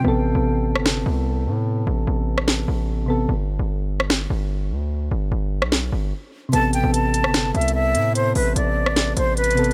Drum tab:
HH |------------------------------------------------|------------------------------------------------|------------------------------------------------|------------------------------------------------|
SD |---------------------r--o-----------------------|---------------------r--o-----------------------|---------------------r--o-----------------------|---------------------r--o-----------------------|

HH |x-----x-----x-----x-----x-----x-x-x-------x-----|x-----o-----x-----------x-----x-----x-x-x-x-x---|
SD |---------------------r--o-----------------------|---------------------r--o-----------------------|